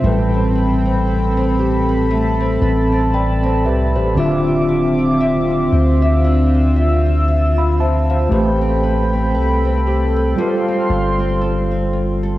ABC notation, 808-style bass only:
X:1
M:4/4
L:1/16
Q:"Swing 16ths" 1/4=58
K:Ddor
V:1 name="808-style bass" clef=bass
A,,,8- A,,,2 A,,,4 C,, A,,, | D,,,6 D,,8- D,,2 | A,,,4 C,,4 z2 G,,,6 |]